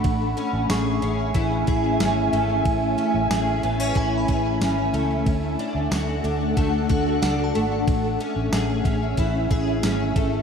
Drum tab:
RD |xxxxxxxx|xxxxxxxx|xxxxxxxx|xxxxxxxx|
TB |--x---x-|--x---x-|--x---x-|--x---x-|
SD |--o---o-|--o---o-|--o---o-|--o---o-|
BD |o---oo--|o---oo--|o---oo--|o--ooo-o|